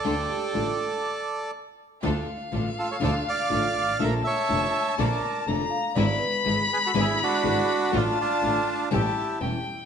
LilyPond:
<<
  \new Staff \with { instrumentName = "Violin" } { \time 4/4 \key d \minor \tempo 4 = 122 g''2 r2 | f''1 | a''2. bes''4 | b''1 |
a''2 a''4 g''4 | }
  \new Staff \with { instrumentName = "Vibraphone" } { \time 4/4 \key d \minor r8 g'8 a'4 r2 | r1 | r2. a'8 f''8 | d''8 b'8. r2 r8. |
r1 | }
  \new Staff \with { instrumentName = "Bandoneon" } { \time 4/4 \key d \minor <a' d''>2. r4 | r4. <f' a'>16 <a' cis''>16 <a' d''>8 <d'' f''>4. | <bes' e''>8 <cis'' e''>4. <bes' d''>4 r4 | r4. <gis' b'>16 <fis' a'>16 <e' gis'>8 <d' fis'>4. |
<d' f'>8 <d' f'>4. <e' g'>4 r4 | }
  \new Staff \with { instrumentName = "String section" } { \time 4/4 \key d \minor <d' f' a'>8 r8 <d' f' a'>8 r2 r8 | <d' f' a'>8 r8 <d' f' a'>8 r8 <d' f' a'>8 r8 <d' f' a'>8 r8 | <bes d' a'>8 r8 <bes d' a'>8 r8 <bes d' a'>8 r8 <bes d' a'>8 r8 | <gis d' e'>8 r8 <gis d' e'>8 r8 <gis d' e'>8 r8 <gis d' e'>8 r8 |
<a d' f'>8 r8 <a d' f'>8 r8 <a cis' g'>8 r8 <a cis' g'>8 r8 | }
  \new Staff \with { instrumentName = "Nylon-string guitar" } { \time 4/4 \key d \minor <d a d' f'>8 r8 <d a d' f'>8 r2 r8 | <d a d' f'>8 r8 <d a d' f'>8 r8 <d a d' f'>8 r8 <d a d' f'>8 r8 | <d a d' f'>8 r8 <d a d' f'>8 r8 <d a d' f'>8 r8 <d a d' f'>8 r8 | <d gis b e' gis'>8 r8 <d gis b e' gis'>8 r8 <d gis b e' gis'>8 r8 <d gis b e' gis'>8 r8 |
<d a d' f'>8 r8 <d a d' f'>8 r8 <e g cis' e'>8 r8 <e g cis' e'>8 r8 | }
  \new Staff \with { instrumentName = "Double bass" } { \clef bass \time 4/4 \key d \minor d,8 r8 a,,8 r2 r8 | d,8 r8 a,,8 r8 d,8 r8 a,,8 gis,,8 | bes,,8 r8 f,,8 r8 bes,,8 r8 f,,8 r8 | gis,,8 r8 gis,,8 r8 gis,,8 r8 gis,,8 r8 |
a,,8 r8 a,,8 r8 a,,8 r8 e,,8 r8 | }
>>